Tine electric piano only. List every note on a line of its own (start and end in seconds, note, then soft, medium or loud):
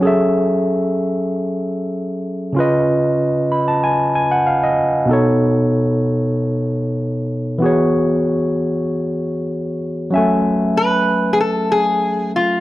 0.00 2.50 F#3 medium
0.00 2.51 C#4 medium
0.00 2.52 G#4 medium
0.05 2.53 A4 medium
0.05 2.54 E5 medium
2.53 5.03 C#3 medium
2.53 5.04 C#4 medium
2.53 5.05 F4 medium
2.59 5.06 B4 medium
2.59 4.62 D#5 medium
3.52 3.67 B5 medium
3.68 3.82 A5 medium
3.84 4.13 G#5 medium
4.15 4.31 G#5 medium
4.31 4.45 F#5 medium
4.47 4.62 F5 medium
4.64 5.06 D#5 medium
5.06 7.56 B2 medium
5.06 7.57 B3 medium
5.06 7.57 D#4 medium
5.11 7.58 A4 medium
5.11 7.59 C#5 medium
7.58 10.08 E3 medium
7.58 10.09 B3 medium
7.58 10.10 F#4 medium
7.64 10.11 G#4 medium
7.64 10.12 C#5 medium
10.10 12.60 F#3 medium
10.10 12.60 C#4 medium
10.10 12.60 E5 medium
10.16 12.60 A3 medium
10.16 12.60 G#5 medium